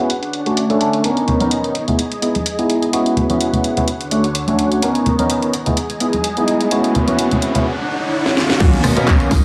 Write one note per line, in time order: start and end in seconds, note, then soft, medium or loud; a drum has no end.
0.00 1.03 F#5 medium
0.10 1.04 D4 medium
0.10 1.74 C#5 medium
0.10 closed hi-hat medium
0.23 closed hi-hat soft
0.33 closed hi-hat medium
0.46 0.67 A3 medium
0.46 0.67 C#4 medium
0.46 0.67 D4 medium
0.46 0.67 F#4 medium
0.46 closed hi-hat soft
0.57 closed hi-hat medium
0.69 0.78 A3 medium
0.69 0.78 C#4 medium
0.69 0.78 D4 medium
0.69 0.78 A4 loud
0.69 closed hi-hat soft
0.81 1.02 A3 medium
0.81 1.02 C#4 medium
0.81 1.02 D4 medium
0.81 1.02 A4 medium
0.81 closed hi-hat medium
0.93 closed hi-hat soft
1.04 1.38 B3 medium
1.04 1.75 B3 medium
1.04 1.38 C#4 medium
1.04 1.75 D#4 medium
1.04 1.38 D#4 medium
1.04 1.38 A#4 medium
1.04 1.75 A#5 medium
1.04 closed hi-hat medium
1.17 closed hi-hat soft
1.17 tambourine soft
1.28 closed hi-hat soft
1.28 tambourine medium
1.28 low conga medium
1.40 1.74 B3 medium
1.40 1.74 C#4 medium
1.40 1.74 D#4 medium
1.40 1.74 A#4 medium
1.40 closed hi-hat soft
1.40 tambourine soft
1.40 high conga medium
1.51 closed hi-hat medium
1.51 tambourine soft
1.64 closed hi-hat soft
1.64 tambourine soft
1.75 3.86 G#4 medium
1.75 2.92 D#5 medium
1.75 2.92 G#5 medium
1.75 closed hi-hat medium
1.75 tambourine medium
1.87 1.98 B3 medium
1.87 1.98 D#4 medium
1.87 1.98 E4 medium
1.87 1.98 G#4 medium
1.87 closed hi-hat soft
1.87 tambourine soft
1.87 low conga medium
1.99 closed hi-hat medium
2.12 closed hi-hat soft
2.12 tambourine soft
2.22 2.34 B3 medium
2.22 2.34 D#4 medium
2.22 2.34 E4 medium
2.22 2.34 G#4 medium
2.22 closed hi-hat medium
2.35 closed hi-hat soft
2.35 tambourine soft
2.35 high conga medium
2.46 closed hi-hat medium
2.46 tambourine soft
2.58 2.91 B3 medium
2.58 2.91 D#4 medium
2.58 2.91 E4 medium
2.58 2.91 G#4 medium
2.58 closed hi-hat soft
2.70 closed hi-hat medium
2.70 tambourine medium
2.83 closed hi-hat soft
2.93 3.27 B3 medium
2.93 3.27 C#4 medium
2.93 3.27 E4 medium
2.93 3.27 F#4 medium
2.93 3.87 B4 medium
2.93 4.81 F#5 medium
2.93 closed hi-hat medium
3.05 closed hi-hat soft
3.05 tambourine soft
3.16 closed hi-hat soft
3.16 tambourine medium
3.16 low conga medium
3.29 3.74 B3 medium
3.29 3.74 C#4 medium
3.29 3.74 E4 medium
3.29 3.74 F#4 medium
3.29 closed hi-hat soft
3.29 tambourine soft
3.29 high conga medium
3.41 closed hi-hat medium
3.41 tambourine soft
3.53 closed hi-hat soft
3.53 tambourine soft
3.53 low conga medium
3.64 closed hi-hat medium
3.64 tambourine medium
3.77 3.87 B3 medium
3.77 3.87 C#4 medium
3.77 3.87 E4 medium
3.77 3.87 F#4 medium
3.77 closed hi-hat soft
3.77 tambourine soft
3.77 low conga medium
3.88 4.82 D3 medium
3.88 5.52 C#5 medium
3.88 closed hi-hat medium
3.88 tambourine medium
4.01 closed hi-hat soft
4.01 tambourine soft
4.11 4.23 A3 medium
4.11 4.23 C#4 medium
4.11 4.23 D4 medium
4.11 4.24 F#4 medium
4.11 closed hi-hat medium
4.11 tambourine medium
4.24 closed hi-hat soft
4.24 tambourine soft
4.35 closed hi-hat medium
4.47 4.80 A3 medium
4.47 4.80 C#4 medium
4.47 4.80 D4 medium
4.47 4.80 F#4 medium
4.47 closed hi-hat soft
4.47 tambourine soft
4.47 high conga medium
4.59 closed hi-hat medium
4.59 tambourine medium
4.72 closed hi-hat soft
4.72 tambourine soft
4.82 5.16 B3 medium
4.82 5.53 B3 medium
4.82 5.16 C#4 medium
4.82 5.16 D#4 medium
4.82 5.53 D#4 medium
4.82 5.16 A#4 medium
4.82 5.53 A#5 medium
4.82 closed hi-hat medium
4.82 tambourine soft
4.82 riser medium
4.95 closed hi-hat soft
4.95 tambourine soft
5.06 closed hi-hat soft
5.06 tambourine medium
5.06 low conga medium
5.19 5.52 B3 medium
5.19 5.52 C#4 medium
5.19 5.52 D#4 medium
5.19 5.52 A#4 medium
5.19 closed hi-hat soft
5.19 tambourine soft
5.19 high conga medium
5.30 closed hi-hat medium
5.30 tambourine soft
5.42 closed hi-hat soft
5.42 tambourine soft
5.53 7.64 G#4 medium
5.53 6.71 D#5 medium
5.53 6.71 G#5 medium
5.53 closed hi-hat medium
5.53 tambourine medium
5.66 5.76 B3 medium
5.66 5.76 D#4 medium
5.66 5.76 E4 medium
5.66 5.76 G#4 medium
5.66 closed hi-hat soft
5.66 tambourine soft
5.66 low conga medium
5.77 closed hi-hat medium
5.77 tambourine medium
5.90 closed hi-hat soft
5.90 tambourine soft
6.00 6.12 B3 medium
6.00 6.13 D#4 medium
6.00 6.13 E4 medium
6.00 6.13 G#4 medium
6.00 closed hi-hat medium
6.00 tambourine medium
6.13 closed hi-hat soft
6.13 tambourine soft
6.13 high conga medium
6.24 closed hi-hat medium
6.24 tambourine medium
6.37 6.69 B3 medium
6.37 6.69 D#4 medium
6.37 6.69 E4 medium
6.37 6.69 G#4 medium
6.37 closed hi-hat soft
6.37 tambourine soft
6.48 closed hi-hat medium
6.48 tambourine medium
6.61 closed hi-hat soft
6.61 tambourine soft
6.71 7.05 B3 medium
6.71 7.05 C#4 medium
6.71 7.05 E4 medium
6.71 7.05 F#4 medium
6.71 7.65 B4 medium
6.71 8.59 F#5 medium
6.71 closed hi-hat medium
6.84 closed hi-hat soft
6.84 tambourine soft
6.95 closed hi-hat soft
6.95 tambourine medium
6.95 low conga loud
7.08 7.52 B3 medium
7.08 7.52 C#4 medium
7.08 7.52 E4 medium
7.08 7.52 F#4 medium
7.08 closed hi-hat soft
7.08 tambourine soft
7.08 high conga medium
7.19 closed hi-hat medium
7.19 tambourine soft
7.31 closed hi-hat soft
7.31 tambourine soft
7.31 low conga medium
7.42 closed hi-hat medium
7.55 7.65 B3 medium
7.55 7.65 C#4 medium
7.55 7.65 E4 medium
7.55 7.65 F#4 medium
7.55 closed hi-hat soft
7.55 tambourine soft
7.55 low conga medium
7.66 8.60 D4 medium
7.66 8.60 C#5 medium
8.26 snare soft
8.37 snare medium
8.50 snare medium
8.60 8.71 B1 loud
8.60 8.94 D#3 medium
8.60 8.94 A#3 medium
8.60 8.94 B3 medium
8.60 8.94 C#4 loud
8.60 9.31 C#4 medium
8.60 9.31 A#4 medium
8.60 9.30 D#5 medium
8.60 kick loud
8.60 closed hi-hat medium
8.60 crash loud
8.60 tambourine medium
8.73 closed hi-hat soft
8.73 tambourine soft
8.73 high conga medium
8.84 8.95 B2 medium
8.84 cross-stick medium
8.84 open hi-hat loud
8.84 tambourine loud
8.84 low conga medium
8.96 9.06 B2 medium
8.96 9.30 D#3 medium
8.96 9.30 A#3 medium
8.96 9.30 B3 medium
8.96 9.30 C#4 medium
8.96 closed hi-hat soft
8.96 tambourine soft
9.07 9.18 B1 medium
9.07 kick loud
9.07 clap loud
9.07 closed hi-hat medium
9.07 tambourine medium
9.07 high conga medium
9.20 closed hi-hat soft
9.20 tambourine soft
9.31 9.42 E1 medium
9.31 9.45 G#4 medium
9.31 9.45 D#5 medium
9.31 9.45 E5 medium
9.31 kick medium
9.31 open hi-hat medium
9.31 tambourine medium